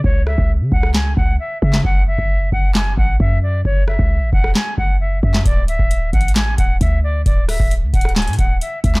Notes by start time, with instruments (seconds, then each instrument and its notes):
0.04 808-style bass C#2, flute C#5, kick
0.27 flute E5, cross-stick
0.38 808-style bass C#2, kick
0.61 808-style bass C#3
0.72 808-style bass C#2, flute F#5, kick
0.83 cross-stick
0.94 flute G#5, snare, clap
1.17 808-style bass C#2, flute F#5, kick
1.40 flute E5
1.62 808-style bass C#3, flute E5, kick
1.73 snare, clap
1.85 808-style bass F#1, flute F#5, kick
2.07 flute E5
2.18 808-style bass F#1, kick
2.52 808-style bass F#1, flute F#5, kick
2.75 flute G#5, snare, clap
2.97 808-style bass A1, flute F#5, kick
3.20 808-style bass F#2, flute E5, kick
3.43 flute D5
3.65 808-style bass F#1, flute C#5, kick
3.88 flute E5, cross-stick
3.99 808-style bass C#2, kick
4.22 808-style bass A1
4.33 808-style bass E1, flute F#5, kick
4.44 cross-stick
4.55 flute G#5, snare, clap
4.78 808-style bass F#1, flute F#5, kick
5.01 flute E5
5.23 808-style bass F#2, flute E5, kick
5.34 snare, clap
5.46 808-style bass D1, flute D5, kick, closed hi-hat
5.68 flute E5, closed hi-hat
5.79 808-style bass D1, kick
5.91 closed hi-hat
6.13 808-style bass A1, flute F#5, kick, closed hi-hat
6.21 closed hi-hat
6.28 closed hi-hat
6.36 flute G#5, snare, clap, closed hi-hat
6.58 808-style bass D1, flute F#5, kick, closed hi-hat
6.81 808-style bass D2, flute E5, kick, closed hi-hat
7.04 flute D5
7.26 808-style bass D1, flute D5, kick, closed hi-hat
7.49 flute E5, cross-stick, open hi-hat
7.60 808-style bass D1, kick
7.71 closed hi-hat
7.82 808-style bass D2
7.94 808-style bass D1, flute F#5, kick, closed hi-hat
8.01 cross-stick, closed hi-hat
8.09 closed hi-hat
8.16 flute G#5, snare, clap, closed hi-hat
8.22 closed hi-hat
8.28 808-style bass A2, closed hi-hat
8.33 closed hi-hat
8.39 808-style bass D1, flute F#5, kick, closed hi-hat
8.61 flute E5, closed hi-hat
8.84 808-style bass D2, flute E5, kick, closed hi-hat
8.95 snare, clap